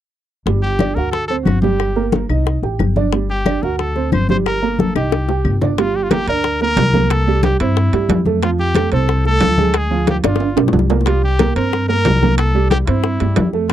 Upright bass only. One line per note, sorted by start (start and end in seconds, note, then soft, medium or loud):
0.46 0.93 G1 medium
0.96 1.43 D2 medium
1.46 2.24 G1 medium
2.29 2.60 C2 medium
2.62 2.78 A1 medium
2.79 3.57 G1 medium
3.63 4.09 D2 medium
4.13 4.90 G1 medium
4.95 5.42 C2 medium
5.45 6.22 G1 medium
6.27 6.74 D2 medium
6.77 7.54 C2 loud
7.60 7.91 G2 medium
7.93 8.08 G2 medium
8.09 8.86 F2 medium
8.92 9.38 C2 medium
9.41 10.18 D2 loud
10.24 10.55 G1 medium
10.56 10.72 B1 medium
10.73 11.50 C2 medium
11.56 12.02 G2 medium
12.06 12.82 C2 loud
12.88 13.19 G2 medium
13.21 13.36 G2 medium
13.38 13.73 F2 medium